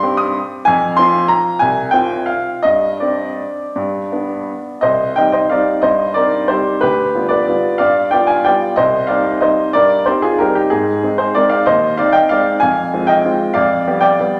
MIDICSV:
0, 0, Header, 1, 2, 480
1, 0, Start_track
1, 0, Key_signature, -3, "minor"
1, 0, Tempo, 317125
1, 999, Time_signature, 3, 2, 24, 8
1, 2921, Tempo, 365408
1, 6281, Tempo, 341686
1, 7721, Tempo, 325733
1, 14921, Tempo, 317965
1, 20960, End_track
2, 0, Start_track
2, 0, Title_t, "Upright piano"
2, 0, Program_c, 0, 0
2, 0, Control_c, 0, 64, 127
2, 0, Note_on_c, 0, 43, 64
2, 0, Note_on_c, 0, 84, 99
2, 44, Note_on_c, 0, 60, 45
2, 45, Note_on_c, 0, 67, 46
2, 263, Note_on_c, 0, 87, 80
2, 272, Note_off_c, 0, 84, 0
2, 550, Control_c, 0, 64, 0
2, 557, Note_off_c, 0, 43, 0
2, 757, Note_off_c, 0, 87, 0
2, 940, Note_off_c, 0, 60, 0
2, 940, Note_off_c, 0, 67, 0
2, 986, Note_on_c, 0, 80, 95
2, 1019, Note_on_c, 0, 41, 68
2, 1308, Control_c, 0, 64, 127
2, 1460, Note_off_c, 0, 80, 0
2, 1462, Note_on_c, 0, 84, 94
2, 1463, Note_off_c, 0, 41, 0
2, 1488, Note_on_c, 0, 60, 40
2, 1501, Note_on_c, 0, 65, 47
2, 1943, Note_on_c, 0, 82, 92
2, 1958, Note_off_c, 0, 84, 0
2, 1977, Control_c, 0, 64, 0
2, 2393, Note_off_c, 0, 60, 0
2, 2400, Note_off_c, 0, 65, 0
2, 2413, Note_on_c, 0, 80, 86
2, 2434, Note_off_c, 0, 82, 0
2, 2441, Note_on_c, 0, 36, 53
2, 2713, Control_c, 0, 64, 127
2, 2891, Note_on_c, 0, 79, 78
2, 2906, Note_off_c, 0, 36, 0
2, 2906, Note_off_c, 0, 80, 0
2, 2925, Note_on_c, 0, 60, 40
2, 2930, Note_on_c, 0, 65, 36
2, 3354, Note_on_c, 0, 77, 70
2, 3365, Note_off_c, 0, 79, 0
2, 3399, Control_c, 0, 64, 0
2, 3809, Note_off_c, 0, 60, 0
2, 3811, Note_off_c, 0, 65, 0
2, 3835, Note_on_c, 0, 75, 85
2, 3847, Note_off_c, 0, 77, 0
2, 3863, Note_on_c, 0, 43, 47
2, 4173, Control_c, 0, 64, 127
2, 4328, Note_on_c, 0, 74, 48
2, 4340, Note_off_c, 0, 43, 0
2, 4341, Note_off_c, 0, 75, 0
2, 4352, Note_on_c, 0, 60, 32
2, 4358, Note_on_c, 0, 62, 32
2, 4867, Control_c, 0, 64, 0
2, 5279, Note_off_c, 0, 60, 0
2, 5283, Note_off_c, 0, 62, 0
2, 5319, Note_on_c, 0, 43, 53
2, 5620, Control_c, 0, 64, 127
2, 5778, Note_off_c, 0, 43, 0
2, 5796, Note_on_c, 0, 59, 33
2, 5796, Note_on_c, 0, 62, 33
2, 6269, Note_off_c, 0, 74, 0
2, 6297, Control_c, 0, 64, 0
2, 6721, Note_off_c, 0, 59, 0
2, 6721, Note_off_c, 0, 62, 0
2, 6736, Note_on_c, 0, 75, 74
2, 6759, Note_on_c, 0, 72, 52
2, 6769, Note_on_c, 0, 36, 48
2, 7023, Control_c, 0, 64, 127
2, 7205, Note_off_c, 0, 72, 0
2, 7221, Note_off_c, 0, 75, 0
2, 7224, Note_on_c, 0, 79, 68
2, 7229, Note_off_c, 0, 36, 0
2, 7242, Note_on_c, 0, 75, 51
2, 7247, Note_on_c, 0, 55, 30
2, 7255, Note_on_c, 0, 60, 34
2, 7258, Note_on_c, 0, 63, 34
2, 7264, Control_c, 0, 64, 0
2, 7433, Note_off_c, 0, 75, 0
2, 7454, Note_on_c, 0, 75, 66
2, 7468, Note_on_c, 0, 72, 46
2, 7472, Note_off_c, 0, 79, 0
2, 7673, Note_off_c, 0, 55, 0
2, 7677, Note_off_c, 0, 60, 0
2, 7679, Note_off_c, 0, 63, 0
2, 7696, Note_off_c, 0, 72, 0
2, 7697, Note_on_c, 0, 77, 67
2, 7706, Note_off_c, 0, 75, 0
2, 7719, Note_on_c, 0, 55, 35
2, 7719, Note_on_c, 0, 74, 50
2, 7728, Note_on_c, 0, 60, 32
2, 7735, Note_on_c, 0, 63, 38
2, 8151, Note_off_c, 0, 55, 0
2, 8157, Note_off_c, 0, 60, 0
2, 8160, Note_off_c, 0, 63, 0
2, 8166, Note_off_c, 0, 74, 0
2, 8169, Note_on_c, 0, 75, 74
2, 8185, Note_on_c, 0, 72, 56
2, 8188, Note_off_c, 0, 77, 0
2, 8197, Note_on_c, 0, 43, 47
2, 8485, Control_c, 0, 64, 127
2, 8628, Note_off_c, 0, 72, 0
2, 8648, Note_on_c, 0, 74, 68
2, 8654, Note_off_c, 0, 43, 0
2, 8654, Note_off_c, 0, 75, 0
2, 8669, Note_on_c, 0, 70, 45
2, 8679, Note_on_c, 0, 60, 33
2, 8689, Note_on_c, 0, 63, 36
2, 9114, Note_off_c, 0, 60, 0
2, 9119, Note_off_c, 0, 63, 0
2, 9123, Note_off_c, 0, 70, 0
2, 9145, Note_on_c, 0, 72, 64
2, 9147, Note_off_c, 0, 74, 0
2, 9168, Note_on_c, 0, 67, 48
2, 9172, Control_c, 0, 64, 0
2, 9179, Note_on_c, 0, 55, 37
2, 9185, Note_on_c, 0, 60, 33
2, 9187, Note_on_c, 0, 63, 32
2, 9606, Note_off_c, 0, 55, 0
2, 9609, Note_off_c, 0, 60, 0
2, 9610, Note_off_c, 0, 63, 0
2, 9614, Note_off_c, 0, 67, 0
2, 9630, Note_on_c, 0, 71, 78
2, 9636, Note_off_c, 0, 72, 0
2, 9649, Note_on_c, 0, 67, 57
2, 9662, Note_on_c, 0, 38, 42
2, 9947, Control_c, 0, 64, 127
2, 10111, Note_off_c, 0, 38, 0
2, 10132, Note_on_c, 0, 55, 30
2, 10136, Note_on_c, 0, 59, 34
2, 10143, Note_on_c, 0, 65, 33
2, 10312, Note_off_c, 0, 67, 0
2, 10334, Note_on_c, 0, 74, 65
2, 10342, Note_off_c, 0, 71, 0
2, 10364, Note_on_c, 0, 71, 53
2, 10570, Note_off_c, 0, 55, 0
2, 10572, Note_off_c, 0, 59, 0
2, 10576, Note_off_c, 0, 65, 0
2, 10609, Note_on_c, 0, 55, 34
2, 10616, Note_on_c, 0, 59, 33
2, 10619, Note_on_c, 0, 65, 37
2, 10630, Control_c, 0, 64, 0
2, 11051, Note_off_c, 0, 55, 0
2, 11051, Note_off_c, 0, 71, 0
2, 11055, Note_off_c, 0, 59, 0
2, 11057, Note_off_c, 0, 65, 0
2, 11061, Note_off_c, 0, 74, 0
2, 11064, Note_on_c, 0, 77, 74
2, 11083, Note_on_c, 0, 74, 58
2, 11094, Note_on_c, 0, 43, 47
2, 11395, Control_c, 0, 64, 127
2, 11533, Note_off_c, 0, 74, 0
2, 11546, Note_on_c, 0, 79, 69
2, 11557, Note_off_c, 0, 77, 0
2, 11558, Note_off_c, 0, 43, 0
2, 11568, Note_on_c, 0, 74, 56
2, 11574, Note_on_c, 0, 59, 30
2, 11584, Note_on_c, 0, 65, 39
2, 11784, Note_on_c, 0, 80, 69
2, 11799, Note_off_c, 0, 74, 0
2, 11800, Note_on_c, 0, 77, 52
2, 11805, Note_off_c, 0, 79, 0
2, 12020, Note_off_c, 0, 59, 0
2, 12025, Note_off_c, 0, 65, 0
2, 12041, Note_off_c, 0, 77, 0
2, 12043, Note_on_c, 0, 79, 70
2, 12052, Note_off_c, 0, 80, 0
2, 12061, Note_on_c, 0, 74, 53
2, 12071, Note_on_c, 0, 55, 35
2, 12080, Note_on_c, 0, 59, 33
2, 12085, Note_on_c, 0, 65, 35
2, 12093, Control_c, 0, 64, 0
2, 12499, Note_off_c, 0, 55, 0
2, 12503, Note_off_c, 0, 59, 0
2, 12506, Note_off_c, 0, 65, 0
2, 12507, Note_off_c, 0, 74, 0
2, 12507, Note_on_c, 0, 75, 81
2, 12526, Note_on_c, 0, 72, 58
2, 12532, Note_off_c, 0, 79, 0
2, 12541, Note_on_c, 0, 36, 51
2, 12838, Control_c, 0, 64, 127
2, 12963, Note_on_c, 0, 77, 67
2, 12964, Note_off_c, 0, 72, 0
2, 12980, Note_on_c, 0, 74, 46
2, 12987, Note_off_c, 0, 75, 0
2, 12990, Note_off_c, 0, 36, 0
2, 12992, Note_on_c, 0, 55, 30
2, 12999, Note_on_c, 0, 60, 35
2, 13004, Note_on_c, 0, 63, 39
2, 13431, Note_off_c, 0, 55, 0
2, 13436, Note_off_c, 0, 60, 0
2, 13438, Note_off_c, 0, 63, 0
2, 13440, Note_off_c, 0, 74, 0
2, 13455, Note_on_c, 0, 75, 63
2, 13466, Note_off_c, 0, 77, 0
2, 13477, Note_on_c, 0, 72, 54
2, 13485, Note_on_c, 0, 55, 34
2, 13489, Note_on_c, 0, 60, 35
2, 13492, Note_on_c, 0, 63, 36
2, 13501, Control_c, 0, 64, 0
2, 13916, Note_off_c, 0, 55, 0
2, 13918, Note_off_c, 0, 60, 0
2, 13919, Note_off_c, 0, 63, 0
2, 13926, Note_off_c, 0, 72, 0
2, 13940, Note_on_c, 0, 74, 79
2, 13949, Note_off_c, 0, 75, 0
2, 13957, Note_on_c, 0, 70, 53
2, 13971, Note_on_c, 0, 43, 48
2, 14211, Control_c, 0, 64, 127
2, 14400, Note_off_c, 0, 70, 0
2, 14418, Note_on_c, 0, 72, 62
2, 14425, Note_off_c, 0, 74, 0
2, 14427, Note_off_c, 0, 43, 0
2, 14432, Note_on_c, 0, 67, 49
2, 14448, Note_on_c, 0, 60, 32
2, 14453, Control_c, 0, 64, 0
2, 14455, Note_on_c, 0, 63, 37
2, 14660, Note_off_c, 0, 67, 0
2, 14662, Note_on_c, 0, 68, 71
2, 14670, Note_off_c, 0, 72, 0
2, 14681, Note_on_c, 0, 65, 51
2, 14878, Note_off_c, 0, 60, 0
2, 14882, Note_off_c, 0, 63, 0
2, 14900, Note_on_c, 0, 70, 71
2, 14904, Note_off_c, 0, 65, 0
2, 14912, Note_off_c, 0, 68, 0
2, 14925, Note_on_c, 0, 67, 55
2, 14937, Note_on_c, 0, 55, 35
2, 14937, Note_on_c, 0, 60, 38
2, 14944, Note_on_c, 0, 63, 39
2, 15129, Note_off_c, 0, 67, 0
2, 15146, Note_off_c, 0, 63, 0
2, 15150, Note_off_c, 0, 70, 0
2, 15152, Note_on_c, 0, 67, 68
2, 15168, Note_on_c, 0, 63, 54
2, 15353, Note_off_c, 0, 55, 0
2, 15353, Note_off_c, 0, 60, 0
2, 15374, Note_off_c, 0, 63, 0
2, 15377, Note_on_c, 0, 68, 71
2, 15387, Note_off_c, 0, 67, 0
2, 15397, Note_on_c, 0, 63, 54
2, 15410, Note_on_c, 0, 44, 50
2, 15626, Control_c, 0, 64, 127
2, 15859, Note_off_c, 0, 44, 0
2, 15863, Note_off_c, 0, 63, 0
2, 15876, Note_on_c, 0, 56, 38
2, 15880, Control_c, 0, 64, 0
2, 15883, Note_on_c, 0, 60, 35
2, 15886, Note_on_c, 0, 63, 38
2, 16094, Note_off_c, 0, 68, 0
2, 16102, Note_on_c, 0, 72, 64
2, 16116, Note_on_c, 0, 68, 48
2, 16314, Note_off_c, 0, 56, 0
2, 16319, Note_off_c, 0, 60, 0
2, 16320, Note_off_c, 0, 63, 0
2, 16344, Note_off_c, 0, 68, 0
2, 16351, Note_on_c, 0, 74, 71
2, 16354, Note_off_c, 0, 72, 0
2, 16373, Note_on_c, 0, 56, 36
2, 16375, Note_on_c, 0, 70, 53
2, 16388, Note_on_c, 0, 60, 37
2, 16392, Note_on_c, 0, 63, 36
2, 16571, Note_off_c, 0, 74, 0
2, 16576, Note_on_c, 0, 77, 73
2, 16594, Note_on_c, 0, 74, 62
2, 16595, Note_off_c, 0, 70, 0
2, 16798, Note_off_c, 0, 56, 0
2, 16806, Note_off_c, 0, 60, 0
2, 16809, Note_off_c, 0, 63, 0
2, 16816, Note_off_c, 0, 74, 0
2, 16821, Note_on_c, 0, 75, 78
2, 16824, Note_off_c, 0, 77, 0
2, 16836, Note_on_c, 0, 72, 63
2, 16850, Note_on_c, 0, 39, 49
2, 17076, Control_c, 0, 64, 127
2, 17273, Note_off_c, 0, 72, 0
2, 17299, Note_off_c, 0, 39, 0
2, 17299, Note_off_c, 0, 75, 0
2, 17300, Note_on_c, 0, 77, 75
2, 17321, Note_on_c, 0, 74, 61
2, 17324, Control_c, 0, 64, 0
2, 17325, Note_on_c, 0, 60, 36
2, 17336, Note_on_c, 0, 63, 42
2, 17528, Note_on_c, 0, 79, 78
2, 17543, Note_on_c, 0, 75, 52
2, 17546, Note_off_c, 0, 74, 0
2, 17553, Note_off_c, 0, 77, 0
2, 17766, Note_off_c, 0, 60, 0
2, 17772, Note_off_c, 0, 63, 0
2, 17780, Note_on_c, 0, 77, 81
2, 17782, Note_off_c, 0, 75, 0
2, 17792, Note_off_c, 0, 79, 0
2, 17807, Note_on_c, 0, 74, 56
2, 17811, Note_on_c, 0, 56, 33
2, 17819, Note_on_c, 0, 60, 37
2, 17827, Note_on_c, 0, 63, 42
2, 18228, Note_off_c, 0, 56, 0
2, 18232, Note_off_c, 0, 60, 0
2, 18236, Note_off_c, 0, 63, 0
2, 18240, Note_off_c, 0, 74, 0
2, 18241, Note_off_c, 0, 77, 0
2, 18241, Note_on_c, 0, 80, 83
2, 18263, Note_on_c, 0, 77, 61
2, 18280, Note_on_c, 0, 41, 50
2, 18560, Control_c, 0, 64, 127
2, 18725, Note_off_c, 0, 41, 0
2, 18740, Note_on_c, 0, 56, 37
2, 18752, Note_on_c, 0, 60, 39
2, 18762, Note_on_c, 0, 65, 37
2, 18918, Note_off_c, 0, 77, 0
2, 18952, Note_on_c, 0, 79, 77
2, 18956, Note_off_c, 0, 80, 0
2, 18970, Note_on_c, 0, 75, 65
2, 19167, Note_off_c, 0, 56, 0
2, 19174, Note_off_c, 0, 60, 0
2, 19179, Note_off_c, 0, 65, 0
2, 19220, Note_on_c, 0, 56, 40
2, 19224, Control_c, 0, 64, 0
2, 19226, Note_on_c, 0, 60, 37
2, 19234, Note_on_c, 0, 65, 46
2, 19639, Note_off_c, 0, 75, 0
2, 19647, Note_off_c, 0, 56, 0
2, 19650, Note_off_c, 0, 60, 0
2, 19655, Note_off_c, 0, 65, 0
2, 19658, Note_on_c, 0, 77, 80
2, 19668, Note_on_c, 0, 74, 63
2, 19681, Note_off_c, 0, 79, 0
2, 19685, Note_on_c, 0, 41, 56
2, 20015, Control_c, 0, 64, 127
2, 20152, Note_off_c, 0, 41, 0
2, 20157, Note_on_c, 0, 55, 39
2, 20162, Note_on_c, 0, 59, 38
2, 20171, Note_on_c, 0, 67, 43
2, 20348, Note_off_c, 0, 74, 0
2, 20367, Note_on_c, 0, 79, 77
2, 20384, Note_on_c, 0, 74, 65
2, 20394, Note_off_c, 0, 77, 0
2, 20600, Note_off_c, 0, 55, 0
2, 20603, Note_off_c, 0, 59, 0
2, 20608, Note_off_c, 0, 67, 0
2, 20647, Note_on_c, 0, 55, 42
2, 20652, Note_on_c, 0, 59, 41
2, 20665, Note_on_c, 0, 67, 40
2, 20667, Control_c, 0, 64, 0
2, 20960, Note_off_c, 0, 55, 0
2, 20960, Note_off_c, 0, 59, 0
2, 20960, Note_off_c, 0, 67, 0
2, 20960, Note_off_c, 0, 74, 0
2, 20960, Note_off_c, 0, 79, 0
2, 20960, End_track
0, 0, End_of_file